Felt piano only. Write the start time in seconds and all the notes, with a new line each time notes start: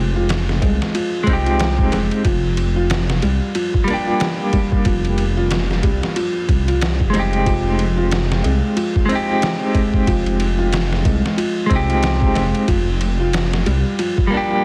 Already playing: F3 G#3 F4
0.16 F4
0.62 G#3
0.94 F3
1.46 F4
1.92 G#3
2.25 F3
2.76 F4
3.22 G3
3.55 F3
4.07 F4
4.53 G3
4.86 F3
5.37 F4
5.84 G3
6.16 F3
6.68 F4
7.14 G3
7.46 F3
7.97 F4
8.44 G#3
8.76 F3
9.28 F4
9.74 G#3
10.07 F3
10.59 F4
11.05 G#3
11.37 F3
11.89 F4
12.35 G#3
12.68 F3
13.20 F4
13.66 G3
13.99 F3
14.51 F4